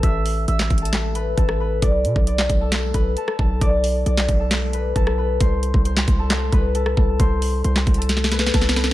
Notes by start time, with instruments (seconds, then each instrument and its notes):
Already playing: harp A4 B4 A5 B5
0.03 808-style bass A1, harp E5 E6, kick, closed hi-hat
0.26 open hi-hat
0.48 808-style bass A1, harp E5 E6, closed hi-hat
0.59 snare, clap
0.70 808-style bass A1, kick, closed hi-hat
0.78 harp A5, closed hi-hat
0.82 harp A4, closed hi-hat
0.93 snare, clap, closed hi-hat
1.15 harp B4 B5, closed hi-hat
1.38 808-style bass A1, harp A4 A5, kick, closed hi-hat
1.49 cross-stick
1.60 harp B4 B5
1.82 808-style bass B1, harp D5 D6, kick, closed hi-hat
2.05 808-style bass B2, closed hi-hat
2.16 808-style bass B1, kick
2.27 harp D5 D6, closed hi-hat
2.38 snare, clap
2.50 808-style bass B1, kick, closed hi-hat
2.61 harp A4 A5
2.72 snare, clap, closed hi-hat
2.94 808-style bass B1, harp B4 B5, kick, closed hi-hat
3.17 harp A4 A5, closed hi-hat
3.28 cross-stick
3.39 808-style bass B1, harp A4 A5, kick
3.61 808-style bass B1, harp D5 D6, kick, closed hi-hat
3.84 open hi-hat
4.06 808-style bass B1, harp D5 D6, closed hi-hat
4.17 snare, clap
4.29 808-style bass B1, kick, closed hi-hat
4.40 harp A4 A5
4.51 snare, clap, closed hi-hat
4.73 harp B4 B5, closed hi-hat
4.96 808-style bass B1, harp A4 A5, kick, closed hi-hat
5.07 cross-stick
5.18 harp B4 B5
5.40 808-style bass C2, harp C5 C6, kick, closed hi-hat
5.63 closed hi-hat
5.74 808-style bass C2, kick
5.85 harp C5 C6, closed hi-hat
5.97 snare, clap
6.08 808-style bass C2, kick, closed hi-hat
6.19 harp A4 A5
6.30 snare, clap, closed hi-hat
6.52 808-style bass C2, harp B4 B5, kick, closed hi-hat
6.75 harp A4 A5, closed hi-hat
6.86 cross-stick
6.97 808-style bass C2, harp A4 A5, kick
7.19 808-style bass C2, harp C5 C6, kick, closed hi-hat
7.42 open hi-hat
7.64 808-style bass C2, harp C5 C6, closed hi-hat
7.76 snare, clap
7.87 808-style bass C2, kick, closed hi-hat
7.94 harp A5, closed hi-hat
7.99 harp A4, closed hi-hat
8.09 snare, closed hi-hat
8.17 snare
8.24 snare
8.32 harp B4 B5, snare, closed hi-hat
8.39 snare
8.47 snare
8.54 808-style bass C2, harp A4 A5, kick, snare, closed hi-hat
8.61 snare
8.69 snare
8.76 harp B4 B5, snare
8.84 snare